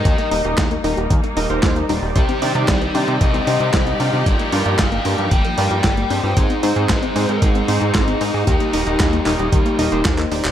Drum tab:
HH |xxoxxxoxxxoxxxo-|xxoxxxoxxxoxxxo-|xxoxxxoxxxoxxxo-|xxoxxxoxxxoxxxo-|
CP |----x-------x---|----x-------x---|----x-------x---|----x-------x---|
SD |----o-------o---|----o-------o---|----o-------o---|----o-------o---|
BD |o---o---o---o---|o---o---o---o---|o---o---o---o---|o---o---o---o---|

HH |xxoxxxoxxxoxxxo-|
CP |----x-x-----xx-x|
SD |----o-------o---|
BD |o---o---o---o---|